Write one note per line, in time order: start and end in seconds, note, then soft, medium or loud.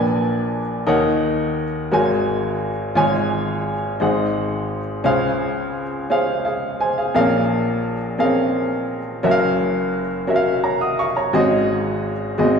0.00 0.82 A#1 medium
0.00 0.82 A#2 medium
0.00 0.59 D4 medium
0.00 0.59 A#4 medium
0.00 0.59 B4 medium
0.00 0.63 G#5 medium
0.87 1.88 D#2 medium
0.87 1.88 D#3 medium
0.87 1.64 D#4 medium
0.87 1.64 A#4 medium
0.87 1.65 C#5 medium
0.87 1.65 F#5 medium
1.91 2.93 G#1 medium
1.91 2.93 G#2 medium
1.91 2.69 F#4 medium
1.91 2.69 A#4 medium
1.91 2.70 C#5 medium
1.91 2.70 G#5 medium
2.95 3.97 G#1 medium
2.95 3.97 G#2 medium
2.95 3.73 F4 medium
2.95 3.74 G#4 medium
2.95 3.74 C#5 medium
2.95 3.74 G#5 medium
4.00 5.02 G#1 medium
4.00 5.02 G#2 medium
4.00 4.78 D#4 medium
4.00 4.78 G#4 medium
4.00 4.79 C5 medium
4.00 4.79 F#5 medium
5.04 7.11 C#2 medium
5.04 7.11 C#3 medium
5.04 5.82 C#4 medium
5.04 5.82 G#4 medium
5.04 5.83 C5 medium
5.04 5.83 F5 medium
6.10 6.88 C#4 medium
6.10 6.44 G#4 medium
6.10 6.46 C5 medium
6.10 6.43 F5 medium
6.45 6.79 G#4 medium
6.45 6.78 F5 medium
6.80 6.97 C5 medium
6.80 6.97 G#5 medium
6.98 7.13 G#4 medium
6.98 7.14 F5 medium
7.14 9.21 A#1 medium
7.14 9.20 A#2 medium
7.14 7.21 C4 medium
7.14 7.92 G#4 medium
7.14 7.93 A#4 medium
7.14 7.93 F5 medium
7.21 7.95 C#4 medium
8.18 8.26 C4 medium
8.18 8.97 G#4 medium
8.18 8.97 A#4 medium
8.18 8.97 F5 medium
8.25 9.00 C#4 medium
9.23 11.29 F#1 medium
9.23 11.30 F#2 medium
9.23 10.01 C#4 medium
9.23 10.01 F#4 medium
9.23 10.02 A#4 medium
9.23 9.31 E5 medium
9.31 10.05 F5 loud
10.27 11.06 C#4 medium
10.27 11.06 F#4 medium
10.27 11.06 A#4 medium
10.27 10.36 E5 medium
10.36 10.67 F5 medium
10.64 10.81 C#5 soft
10.64 10.80 A#5 medium
10.81 10.98 F#5 medium
10.81 10.98 D#6 medium
10.99 11.16 F5 medium
10.99 11.16 C#6 medium
11.17 11.50 C#5 soft
11.17 11.50 A#5 medium
11.33 12.34 G#1 medium
11.33 12.34 G#2 medium
11.33 11.40 C4 medium
11.33 12.11 F#4 medium
11.33 12.11 G#4 medium
11.33 12.11 D#5 medium
11.40 12.14 C#4 medium
12.38 12.60 G#1 medium
12.38 12.60 G#2 medium
12.38 12.44 B3 medium
12.38 12.60 F#4 medium
12.38 12.60 G#4 medium
12.38 12.60 D#5 medium
12.44 12.60 C4 medium